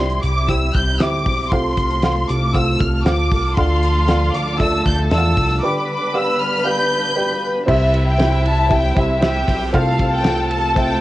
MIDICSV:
0, 0, Header, 1, 7, 480
1, 0, Start_track
1, 0, Key_signature, 0, "major"
1, 0, Tempo, 513479
1, 1422, Time_signature, 4, 2, 24, 8
1, 10290, End_track
2, 0, Start_track
2, 0, Title_t, "Violin section"
2, 0, Program_c, 0, 48
2, 0, Note_on_c, 0, 84, 90
2, 216, Note_on_c, 0, 86, 93
2, 222, Note_off_c, 0, 84, 0
2, 442, Note_off_c, 0, 86, 0
2, 457, Note_on_c, 0, 88, 106
2, 699, Note_on_c, 0, 91, 96
2, 700, Note_off_c, 0, 88, 0
2, 934, Note_on_c, 0, 86, 92
2, 941, Note_off_c, 0, 91, 0
2, 1407, Note_on_c, 0, 84, 90
2, 1418, Note_off_c, 0, 86, 0
2, 2129, Note_on_c, 0, 86, 90
2, 2134, Note_off_c, 0, 84, 0
2, 2373, Note_on_c, 0, 88, 102
2, 2375, Note_off_c, 0, 86, 0
2, 2609, Note_on_c, 0, 89, 89
2, 2617, Note_off_c, 0, 88, 0
2, 2851, Note_on_c, 0, 86, 93
2, 2855, Note_off_c, 0, 89, 0
2, 3302, Note_off_c, 0, 86, 0
2, 3338, Note_on_c, 0, 84, 90
2, 4058, Note_on_c, 0, 86, 90
2, 4059, Note_off_c, 0, 84, 0
2, 4300, Note_off_c, 0, 86, 0
2, 4303, Note_on_c, 0, 88, 105
2, 4525, Note_off_c, 0, 88, 0
2, 4543, Note_on_c, 0, 91, 90
2, 4651, Note_off_c, 0, 91, 0
2, 4782, Note_on_c, 0, 88, 101
2, 5228, Note_off_c, 0, 88, 0
2, 5264, Note_on_c, 0, 86, 92
2, 5383, Note_off_c, 0, 86, 0
2, 5395, Note_on_c, 0, 86, 70
2, 5492, Note_off_c, 0, 86, 0
2, 5504, Note_on_c, 0, 86, 84
2, 5726, Note_off_c, 0, 86, 0
2, 5747, Note_on_c, 0, 88, 95
2, 5984, Note_off_c, 0, 88, 0
2, 5989, Note_on_c, 0, 89, 94
2, 6225, Note_off_c, 0, 89, 0
2, 6236, Note_on_c, 0, 91, 108
2, 6949, Note_off_c, 0, 91, 0
2, 7196, Note_on_c, 0, 76, 83
2, 7524, Note_off_c, 0, 76, 0
2, 7555, Note_on_c, 0, 79, 83
2, 7883, Note_off_c, 0, 79, 0
2, 7916, Note_on_c, 0, 81, 92
2, 8148, Note_off_c, 0, 81, 0
2, 8155, Note_on_c, 0, 79, 103
2, 8388, Note_off_c, 0, 79, 0
2, 8393, Note_on_c, 0, 76, 87
2, 8615, Note_off_c, 0, 76, 0
2, 8627, Note_on_c, 0, 76, 85
2, 8959, Note_off_c, 0, 76, 0
2, 9113, Note_on_c, 0, 77, 92
2, 9442, Note_off_c, 0, 77, 0
2, 9471, Note_on_c, 0, 79, 94
2, 9801, Note_off_c, 0, 79, 0
2, 9829, Note_on_c, 0, 81, 97
2, 10048, Note_off_c, 0, 81, 0
2, 10071, Note_on_c, 0, 79, 107
2, 10290, Note_off_c, 0, 79, 0
2, 10290, End_track
3, 0, Start_track
3, 0, Title_t, "Violin section"
3, 0, Program_c, 1, 48
3, 3343, Note_on_c, 1, 65, 76
3, 3347, Note_on_c, 1, 77, 82
3, 4283, Note_off_c, 1, 65, 0
3, 4285, Note_off_c, 1, 77, 0
3, 4292, Note_on_c, 1, 69, 76
3, 4296, Note_on_c, 1, 81, 85
3, 5237, Note_off_c, 1, 69, 0
3, 5239, Note_off_c, 1, 81, 0
3, 5261, Note_on_c, 1, 83, 90
3, 5263, Note_on_c, 1, 71, 83
3, 7144, Note_off_c, 1, 83, 0
3, 7145, Note_off_c, 1, 71, 0
3, 7184, Note_on_c, 1, 64, 78
3, 7189, Note_on_c, 1, 76, 86
3, 8593, Note_off_c, 1, 64, 0
3, 8596, Note_off_c, 1, 76, 0
3, 8616, Note_on_c, 1, 67, 74
3, 8619, Note_on_c, 1, 79, 92
3, 9089, Note_off_c, 1, 67, 0
3, 9090, Note_off_c, 1, 79, 0
3, 9099, Note_on_c, 1, 69, 86
3, 9103, Note_on_c, 1, 81, 91
3, 10290, Note_off_c, 1, 69, 0
3, 10290, Note_off_c, 1, 81, 0
3, 10290, End_track
4, 0, Start_track
4, 0, Title_t, "Upright piano"
4, 0, Program_c, 2, 0
4, 0, Control_c, 2, 64, 127
4, 0, Note_on_c, 2, 48, 60
4, 0, Note_on_c, 2, 64, 65
4, 0, Note_on_c, 2, 67, 62
4, 0, Note_on_c, 2, 72, 59
4, 0, Note_on_c, 2, 74, 71
4, 0, Note_on_c, 2, 76, 75
4, 183, Note_off_c, 2, 48, 0
4, 329, Note_off_c, 2, 64, 0
4, 332, Note_off_c, 2, 67, 0
4, 333, Note_off_c, 2, 72, 0
4, 336, Note_off_c, 2, 74, 0
4, 446, Note_on_c, 2, 64, 63
4, 449, Note_on_c, 2, 67, 61
4, 453, Note_on_c, 2, 72, 56
4, 459, Note_on_c, 2, 79, 66
4, 807, Note_off_c, 2, 64, 0
4, 809, Note_off_c, 2, 67, 0
4, 810, Note_off_c, 2, 72, 0
4, 813, Note_off_c, 2, 79, 0
4, 930, Note_on_c, 2, 64, 72
4, 937, Note_on_c, 2, 67, 65
4, 939, Note_on_c, 2, 72, 63
4, 946, Note_off_c, 2, 76, 0
4, 946, Note_on_c, 2, 76, 75
4, 1289, Note_off_c, 2, 64, 0
4, 1292, Note_off_c, 2, 67, 0
4, 1293, Note_off_c, 2, 72, 0
4, 1297, Note_off_c, 2, 76, 0
4, 1411, Note_on_c, 2, 65, 67
4, 1417, Note_on_c, 2, 69, 66
4, 1422, Note_on_c, 2, 48, 58
4, 1423, Note_on_c, 2, 72, 65
4, 1425, Note_on_c, 2, 77, 81
4, 1433, Control_c, 2, 64, 0
4, 1571, Control_c, 2, 64, 127
4, 1769, Note_off_c, 2, 65, 0
4, 1772, Note_off_c, 2, 69, 0
4, 1775, Note_off_c, 2, 72, 0
4, 1776, Note_off_c, 2, 77, 0
4, 1892, Note_on_c, 2, 65, 66
4, 1895, Note_on_c, 2, 69, 66
4, 1900, Note_on_c, 2, 72, 64
4, 1904, Note_on_c, 2, 77, 79
4, 2104, Note_off_c, 2, 48, 0
4, 2250, Note_off_c, 2, 65, 0
4, 2251, Note_off_c, 2, 69, 0
4, 2254, Note_off_c, 2, 72, 0
4, 2256, Note_off_c, 2, 77, 0
4, 2367, Note_on_c, 2, 65, 65
4, 2371, Note_on_c, 2, 69, 62
4, 2376, Note_on_c, 2, 72, 59
4, 2384, Note_on_c, 2, 77, 71
4, 2727, Note_off_c, 2, 65, 0
4, 2729, Note_off_c, 2, 69, 0
4, 2732, Note_off_c, 2, 72, 0
4, 2736, Note_off_c, 2, 77, 0
4, 2846, Note_on_c, 2, 65, 72
4, 2852, Note_on_c, 2, 69, 66
4, 2856, Note_on_c, 2, 72, 66
4, 2859, Note_on_c, 2, 77, 83
4, 3207, Note_off_c, 2, 65, 0
4, 3210, Note_off_c, 2, 69, 0
4, 3212, Note_off_c, 2, 72, 0
4, 3213, Note_off_c, 2, 77, 0
4, 3330, Note_on_c, 2, 65, 72
4, 3336, Note_on_c, 2, 69, 63
4, 3337, Note_on_c, 2, 50, 58
4, 3339, Note_on_c, 2, 74, 65
4, 3346, Note_on_c, 2, 77, 81
4, 3354, Control_c, 2, 64, 0
4, 3539, Control_c, 2, 64, 127
4, 3689, Note_off_c, 2, 65, 0
4, 3692, Note_off_c, 2, 69, 0
4, 3693, Note_off_c, 2, 74, 0
4, 3697, Note_off_c, 2, 77, 0
4, 3809, Note_on_c, 2, 65, 70
4, 3809, Note_on_c, 2, 69, 67
4, 3817, Note_on_c, 2, 74, 64
4, 3821, Note_on_c, 2, 77, 78
4, 4021, Note_off_c, 2, 50, 0
4, 4168, Note_off_c, 2, 65, 0
4, 4168, Note_off_c, 2, 69, 0
4, 4172, Note_off_c, 2, 74, 0
4, 4174, Note_off_c, 2, 77, 0
4, 4283, Note_on_c, 2, 65, 73
4, 4286, Note_on_c, 2, 69, 66
4, 4290, Note_on_c, 2, 74, 61
4, 4295, Note_on_c, 2, 76, 72
4, 4645, Note_off_c, 2, 65, 0
4, 4647, Note_off_c, 2, 69, 0
4, 4649, Note_off_c, 2, 74, 0
4, 4651, Note_off_c, 2, 76, 0
4, 4771, Note_on_c, 2, 65, 74
4, 4775, Note_on_c, 2, 69, 66
4, 4777, Note_on_c, 2, 74, 68
4, 4788, Note_on_c, 2, 76, 63
4, 4840, Note_on_c, 2, 77, 84
4, 4842, Note_off_c, 2, 76, 0
4, 5129, Note_off_c, 2, 65, 0
4, 5131, Note_off_c, 2, 69, 0
4, 5132, Note_off_c, 2, 74, 0
4, 5164, Note_off_c, 2, 77, 0
4, 5257, Note_on_c, 2, 67, 69
4, 5259, Note_on_c, 2, 50, 65
4, 5260, Note_on_c, 2, 71, 68
4, 5264, Note_on_c, 2, 74, 70
4, 5268, Note_on_c, 2, 79, 79
4, 5273, Control_c, 2, 64, 0
4, 5419, Control_c, 2, 64, 127
4, 5612, Note_off_c, 2, 67, 0
4, 5614, Note_off_c, 2, 71, 0
4, 5616, Note_off_c, 2, 74, 0
4, 5618, Note_off_c, 2, 79, 0
4, 5732, Note_on_c, 2, 67, 73
4, 5736, Note_on_c, 2, 71, 69
4, 5739, Note_on_c, 2, 74, 64
4, 5747, Note_on_c, 2, 77, 77
4, 5943, Note_off_c, 2, 50, 0
4, 6090, Note_off_c, 2, 67, 0
4, 6092, Note_off_c, 2, 71, 0
4, 6093, Note_off_c, 2, 74, 0
4, 6097, Note_off_c, 2, 77, 0
4, 6204, Note_on_c, 2, 67, 68
4, 6209, Note_on_c, 2, 71, 63
4, 6212, Note_on_c, 2, 74, 66
4, 6215, Note_on_c, 2, 77, 79
4, 6566, Note_off_c, 2, 67, 0
4, 6568, Note_off_c, 2, 71, 0
4, 6569, Note_off_c, 2, 74, 0
4, 6571, Note_off_c, 2, 77, 0
4, 6688, Note_on_c, 2, 67, 76
4, 6690, Note_on_c, 2, 71, 74
4, 6696, Note_on_c, 2, 74, 74
4, 6702, Note_on_c, 2, 79, 84
4, 7048, Note_off_c, 2, 67, 0
4, 7049, Note_off_c, 2, 71, 0
4, 7052, Note_off_c, 2, 74, 0
4, 7054, Note_off_c, 2, 79, 0
4, 7162, Note_on_c, 2, 60, 98
4, 7169, Note_on_c, 2, 48, 63
4, 7169, Note_on_c, 2, 67, 87
4, 7170, Note_on_c, 2, 64, 86
4, 7174, Note_on_c, 2, 72, 85
4, 7177, Note_on_c, 2, 76, 105
4, 7195, Control_c, 2, 64, 0
4, 7361, Control_c, 2, 64, 127
4, 7524, Note_off_c, 2, 60, 0
4, 7528, Note_off_c, 2, 67, 0
4, 7529, Note_off_c, 2, 64, 0
4, 7530, Note_off_c, 2, 72, 0
4, 7532, Note_off_c, 2, 76, 0
4, 7647, Note_on_c, 2, 60, 76
4, 7649, Note_on_c, 2, 64, 66
4, 7654, Note_on_c, 2, 67, 67
4, 7658, Note_on_c, 2, 72, 68
4, 7660, Note_on_c, 2, 76, 75
4, 7858, Note_off_c, 2, 48, 0
4, 8007, Note_off_c, 2, 60, 0
4, 8008, Note_off_c, 2, 64, 0
4, 8011, Note_off_c, 2, 67, 0
4, 8012, Note_off_c, 2, 72, 0
4, 8013, Note_off_c, 2, 76, 0
4, 8120, Note_on_c, 2, 60, 65
4, 8126, Note_on_c, 2, 64, 63
4, 8131, Note_on_c, 2, 72, 63
4, 8132, Note_on_c, 2, 67, 59
4, 8136, Note_on_c, 2, 76, 76
4, 8307, Note_off_c, 2, 60, 0
4, 8310, Note_off_c, 2, 64, 0
4, 8313, Note_off_c, 2, 67, 0
4, 8313, Note_off_c, 2, 72, 0
4, 8315, Note_off_c, 2, 76, 0
4, 8368, Note_on_c, 2, 60, 69
4, 8372, Note_on_c, 2, 64, 60
4, 8375, Note_on_c, 2, 67, 65
4, 8379, Note_on_c, 2, 72, 62
4, 8382, Note_on_c, 2, 76, 73
4, 8551, Note_off_c, 2, 60, 0
4, 8553, Note_off_c, 2, 64, 0
4, 8555, Note_off_c, 2, 67, 0
4, 8557, Note_off_c, 2, 72, 0
4, 8558, Note_off_c, 2, 76, 0
4, 8606, Note_on_c, 2, 60, 75
4, 8609, Note_on_c, 2, 64, 70
4, 8613, Note_on_c, 2, 67, 69
4, 8615, Note_on_c, 2, 72, 67
4, 8616, Note_on_c, 2, 76, 85
4, 8967, Note_off_c, 2, 60, 0
4, 8968, Note_off_c, 2, 64, 0
4, 8970, Note_off_c, 2, 67, 0
4, 8971, Note_off_c, 2, 72, 0
4, 8972, Note_off_c, 2, 76, 0
4, 9093, Note_on_c, 2, 60, 94
4, 9096, Note_on_c, 2, 48, 63
4, 9096, Note_on_c, 2, 65, 90
4, 9097, Note_on_c, 2, 69, 92
4, 9102, Note_on_c, 2, 72, 90
4, 9107, Note_on_c, 2, 77, 107
4, 9115, Control_c, 2, 64, 0
4, 9298, Control_c, 2, 64, 127
4, 9450, Note_off_c, 2, 60, 0
4, 9451, Note_off_c, 2, 65, 0
4, 9452, Note_off_c, 2, 69, 0
4, 9454, Note_off_c, 2, 72, 0
4, 9457, Note_off_c, 2, 77, 0
4, 9567, Note_on_c, 2, 60, 74
4, 9574, Note_on_c, 2, 65, 71
4, 9575, Note_on_c, 2, 69, 67
4, 9576, Note_on_c, 2, 72, 66
4, 9580, Note_on_c, 2, 77, 75
4, 9781, Note_off_c, 2, 48, 0
4, 9927, Note_off_c, 2, 60, 0
4, 9930, Note_off_c, 2, 65, 0
4, 9931, Note_off_c, 2, 69, 0
4, 9932, Note_off_c, 2, 72, 0
4, 9933, Note_off_c, 2, 77, 0
4, 10051, Note_on_c, 2, 60, 72
4, 10054, Note_on_c, 2, 65, 66
4, 10058, Note_on_c, 2, 69, 60
4, 10061, Note_on_c, 2, 72, 62
4, 10063, Note_on_c, 2, 76, 72
4, 10233, Note_off_c, 2, 60, 0
4, 10234, Note_off_c, 2, 65, 0
4, 10236, Note_off_c, 2, 69, 0
4, 10238, Note_off_c, 2, 72, 0
4, 10238, Note_off_c, 2, 76, 0
4, 10290, End_track
5, 0, Start_track
5, 0, Title_t, "String section"
5, 0, Program_c, 3, 48
5, 0, Note_on_c, 3, 55, 74
5, 0, Note_on_c, 3, 60, 68
5, 0, Note_on_c, 3, 64, 78
5, 1400, Note_off_c, 3, 64, 0
5, 1401, Note_off_c, 3, 55, 0
5, 1415, Note_on_c, 3, 57, 71
5, 1419, Note_on_c, 3, 69, 84
5, 3300, Note_off_c, 3, 60, 0
5, 3319, Note_off_c, 3, 57, 0
5, 3337, Note_on_c, 3, 50, 81
5, 3337, Note_on_c, 3, 57, 72
5, 3338, Note_on_c, 3, 62, 71
5, 3343, Note_on_c, 3, 53, 73
5, 5223, Note_off_c, 3, 69, 0
5, 5240, Note_off_c, 3, 50, 0
5, 5240, Note_off_c, 3, 57, 0
5, 5240, Note_off_c, 3, 62, 0
5, 5243, Note_off_c, 3, 53, 0
5, 5264, Note_on_c, 3, 59, 76
5, 5265, Note_on_c, 3, 50, 79
5, 5266, Note_on_c, 3, 55, 73
5, 5268, Note_on_c, 3, 62, 94
5, 7163, Note_off_c, 3, 59, 0
5, 7164, Note_off_c, 3, 50, 0
5, 7164, Note_off_c, 3, 55, 0
5, 7165, Note_off_c, 3, 62, 0
5, 7183, Note_on_c, 3, 64, 91
5, 7185, Note_on_c, 3, 60, 72
5, 7187, Note_on_c, 3, 55, 75
5, 9083, Note_off_c, 3, 64, 0
5, 9084, Note_off_c, 3, 55, 0
5, 9102, Note_on_c, 3, 69, 93
5, 9104, Note_on_c, 3, 57, 82
5, 10290, Note_off_c, 3, 57, 0
5, 10290, Note_off_c, 3, 60, 0
5, 10290, Note_off_c, 3, 69, 0
5, 10290, End_track
6, 0, Start_track
6, 0, Title_t, "Analog synth bass"
6, 0, Program_c, 4, 38
6, 0, Note_on_c, 4, 36, 98
6, 185, Note_off_c, 4, 36, 0
6, 220, Note_on_c, 4, 36, 101
6, 667, Note_off_c, 4, 36, 0
6, 699, Note_on_c, 4, 36, 90
6, 923, Note_off_c, 4, 36, 0
6, 943, Note_on_c, 4, 38, 89
6, 1166, Note_off_c, 4, 38, 0
6, 1176, Note_on_c, 4, 35, 90
6, 1402, Note_off_c, 4, 35, 0
6, 1420, Note_on_c, 4, 36, 103
6, 2104, Note_off_c, 4, 36, 0
6, 2144, Note_on_c, 4, 36, 99
6, 2589, Note_off_c, 4, 36, 0
6, 2620, Note_on_c, 4, 36, 92
6, 2844, Note_off_c, 4, 36, 0
6, 2859, Note_on_c, 4, 38, 85
6, 3083, Note_off_c, 4, 38, 0
6, 3099, Note_on_c, 4, 36, 99
6, 3323, Note_off_c, 4, 36, 0
6, 3341, Note_on_c, 4, 38, 115
6, 4025, Note_off_c, 4, 38, 0
6, 4056, Note_on_c, 4, 38, 96
6, 4505, Note_off_c, 4, 38, 0
6, 4541, Note_on_c, 4, 38, 100
6, 4764, Note_off_c, 4, 38, 0
6, 4781, Note_on_c, 4, 40, 101
6, 5004, Note_off_c, 4, 40, 0
6, 5021, Note_on_c, 4, 36, 83
6, 5244, Note_off_c, 4, 36, 0
6, 7182, Note_on_c, 4, 36, 108
6, 8344, Note_off_c, 4, 36, 0
6, 8381, Note_on_c, 4, 36, 97
6, 8828, Note_off_c, 4, 36, 0
6, 8863, Note_on_c, 4, 35, 90
6, 9085, Note_off_c, 4, 35, 0
6, 9103, Note_on_c, 4, 36, 105
6, 10264, Note_off_c, 4, 36, 0
6, 10290, End_track
7, 0, Start_track
7, 0, Title_t, "Drums"
7, 91, Note_on_c, 9, 42, 41
7, 185, Note_off_c, 9, 42, 0
7, 214, Note_on_c, 9, 42, 76
7, 307, Note_off_c, 9, 42, 0
7, 454, Note_on_c, 9, 36, 84
7, 458, Note_on_c, 9, 42, 73
7, 548, Note_off_c, 9, 36, 0
7, 551, Note_off_c, 9, 42, 0
7, 696, Note_on_c, 9, 42, 71
7, 698, Note_on_c, 9, 36, 86
7, 789, Note_off_c, 9, 42, 0
7, 792, Note_off_c, 9, 36, 0
7, 935, Note_on_c, 9, 42, 88
7, 938, Note_on_c, 9, 38, 100
7, 1028, Note_off_c, 9, 42, 0
7, 1032, Note_off_c, 9, 38, 0
7, 1177, Note_on_c, 9, 36, 88
7, 1180, Note_on_c, 9, 46, 72
7, 1270, Note_off_c, 9, 36, 0
7, 1273, Note_off_c, 9, 46, 0
7, 1418, Note_on_c, 9, 36, 97
7, 1418, Note_on_c, 9, 42, 80
7, 1512, Note_off_c, 9, 36, 0
7, 1512, Note_off_c, 9, 42, 0
7, 1656, Note_on_c, 9, 42, 68
7, 1658, Note_on_c, 9, 36, 80
7, 1749, Note_off_c, 9, 42, 0
7, 1751, Note_off_c, 9, 36, 0
7, 1781, Note_on_c, 9, 42, 42
7, 1874, Note_off_c, 9, 42, 0
7, 1892, Note_on_c, 9, 42, 80
7, 1899, Note_on_c, 9, 38, 96
7, 1986, Note_off_c, 9, 42, 0
7, 1992, Note_off_c, 9, 38, 0
7, 2140, Note_on_c, 9, 42, 80
7, 2234, Note_off_c, 9, 42, 0
7, 2378, Note_on_c, 9, 36, 86
7, 2385, Note_on_c, 9, 42, 74
7, 2471, Note_off_c, 9, 36, 0
7, 2478, Note_off_c, 9, 42, 0
7, 2620, Note_on_c, 9, 36, 92
7, 2621, Note_on_c, 9, 42, 72
7, 2714, Note_off_c, 9, 36, 0
7, 2714, Note_off_c, 9, 42, 0
7, 2858, Note_on_c, 9, 42, 88
7, 2861, Note_on_c, 9, 38, 107
7, 2951, Note_off_c, 9, 42, 0
7, 2955, Note_off_c, 9, 38, 0
7, 3099, Note_on_c, 9, 36, 85
7, 3103, Note_on_c, 9, 46, 75
7, 3193, Note_off_c, 9, 36, 0
7, 3197, Note_off_c, 9, 46, 0
7, 3341, Note_on_c, 9, 36, 104
7, 3341, Note_on_c, 9, 42, 80
7, 3434, Note_off_c, 9, 36, 0
7, 3434, Note_off_c, 9, 42, 0
7, 3579, Note_on_c, 9, 42, 69
7, 3673, Note_off_c, 9, 42, 0
7, 3813, Note_on_c, 9, 42, 82
7, 3820, Note_on_c, 9, 38, 103
7, 3907, Note_off_c, 9, 42, 0
7, 3913, Note_off_c, 9, 38, 0
7, 4061, Note_on_c, 9, 42, 80
7, 4154, Note_off_c, 9, 42, 0
7, 4300, Note_on_c, 9, 36, 90
7, 4304, Note_on_c, 9, 42, 72
7, 4393, Note_off_c, 9, 36, 0
7, 4397, Note_off_c, 9, 42, 0
7, 4540, Note_on_c, 9, 42, 76
7, 4542, Note_on_c, 9, 36, 99
7, 4633, Note_off_c, 9, 42, 0
7, 4636, Note_off_c, 9, 36, 0
7, 4779, Note_on_c, 9, 42, 87
7, 4782, Note_on_c, 9, 38, 114
7, 4872, Note_off_c, 9, 42, 0
7, 4875, Note_off_c, 9, 38, 0
7, 5021, Note_on_c, 9, 36, 92
7, 5021, Note_on_c, 9, 46, 73
7, 5114, Note_off_c, 9, 36, 0
7, 5115, Note_off_c, 9, 46, 0
7, 7181, Note_on_c, 9, 36, 102
7, 7183, Note_on_c, 9, 49, 92
7, 7275, Note_off_c, 9, 36, 0
7, 7277, Note_off_c, 9, 49, 0
7, 7421, Note_on_c, 9, 51, 57
7, 7514, Note_off_c, 9, 51, 0
7, 7659, Note_on_c, 9, 51, 73
7, 7666, Note_on_c, 9, 38, 104
7, 7753, Note_off_c, 9, 51, 0
7, 7759, Note_off_c, 9, 38, 0
7, 7904, Note_on_c, 9, 51, 63
7, 7997, Note_off_c, 9, 51, 0
7, 8140, Note_on_c, 9, 36, 97
7, 8146, Note_on_c, 9, 51, 57
7, 8233, Note_off_c, 9, 36, 0
7, 8239, Note_off_c, 9, 51, 0
7, 8381, Note_on_c, 9, 51, 58
7, 8382, Note_on_c, 9, 36, 98
7, 8474, Note_off_c, 9, 51, 0
7, 8476, Note_off_c, 9, 36, 0
7, 8622, Note_on_c, 9, 51, 80
7, 8625, Note_on_c, 9, 38, 107
7, 8715, Note_off_c, 9, 51, 0
7, 8718, Note_off_c, 9, 38, 0
7, 8862, Note_on_c, 9, 36, 85
7, 8868, Note_on_c, 9, 38, 34
7, 8871, Note_on_c, 9, 46, 80
7, 8871, Note_on_c, 9, 51, 67
7, 8955, Note_off_c, 9, 36, 0
7, 8962, Note_off_c, 9, 38, 0
7, 8964, Note_off_c, 9, 46, 0
7, 8964, Note_off_c, 9, 51, 0
7, 9103, Note_on_c, 9, 36, 102
7, 9103, Note_on_c, 9, 44, 57
7, 9104, Note_on_c, 9, 51, 72
7, 9196, Note_off_c, 9, 36, 0
7, 9197, Note_off_c, 9, 44, 0
7, 9197, Note_off_c, 9, 51, 0
7, 9341, Note_on_c, 9, 36, 77
7, 9342, Note_on_c, 9, 51, 60
7, 9435, Note_off_c, 9, 36, 0
7, 9435, Note_off_c, 9, 51, 0
7, 9574, Note_on_c, 9, 51, 77
7, 9580, Note_on_c, 9, 38, 116
7, 9668, Note_off_c, 9, 51, 0
7, 9674, Note_off_c, 9, 38, 0
7, 9823, Note_on_c, 9, 51, 64
7, 9916, Note_off_c, 9, 51, 0
7, 10061, Note_on_c, 9, 36, 95
7, 10068, Note_on_c, 9, 51, 62
7, 10155, Note_off_c, 9, 36, 0
7, 10162, Note_off_c, 9, 51, 0
7, 10290, End_track
0, 0, End_of_file